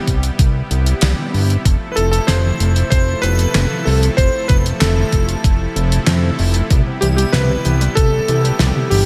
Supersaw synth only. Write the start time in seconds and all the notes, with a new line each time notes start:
Already playing: C3 G3 B3 E4 G4
1.66 F3 A3 A4
6.71 G3 B3 G4